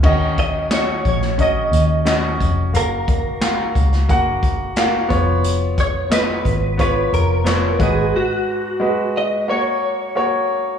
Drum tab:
CC |x---------------|----------------|----------------|----------------|
HH |--x-x-x-x-x-x-x-|x-x-x-xxx-x-x-x-|x-x-x-x-x-x-x-x-|----------------|
CP |----x-------x---|----x-------x---|----x-------x---|----------------|
SD |----o--o----o---|----o--o----o---|----o-------o---|----------------|
BD |o-o---o-o-----o-|--o---o-o-o---o-|--o---o-o-----o-|----------------|